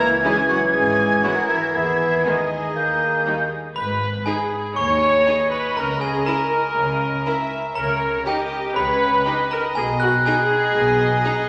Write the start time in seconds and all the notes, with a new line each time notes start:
Already playing: C#2 E3 E4 G#6
0.00 A#3 A#4
0.24 E3 G#3 C#4 E4 G#4 G#5
0.49 F#3 F#4 F#5
0.73 G#1 G#3 G#4 G#5
1.24 E3 F#3 G#3 C#4 E4 F#4 A#4 F#5
1.49 E3 E4 E5
1.74 D#2 E3 B3 E4 G#4 E5
2.25 D#3 G#3 B3 D#4 D#5
2.75 D#2 A#3 G6
3.26 D#3 G3 A#3 D#4
3.76 G#1 G#2 B4 B5
4.26 D#4 G#4 G#5
4.76 D#2 C#5 D#5 C#6
5.27 D#4 G#4
5.52 B4 B5
5.77 C#2 C#3 A#4 A#5
6.01 G#4 G#5
6.26 E4 A#4 A#5
6.77 C#2 C#3
7.26 E4 A#4 E5
7.75 C#2 C#3 A#4 C#5 A#5
8.26 D#4 G4 D#5 G5
8.76 C#2 C#3 B4 C#5 B5
9.25 D#4 G4 D#5
9.51 A#4 A#5
9.75 B1 B2 G#4 G#5
10.00 F#4 F#6
10.25 D#4 G#4 D#5 G#5
10.75 B1 B2
11.25 D#4 G#4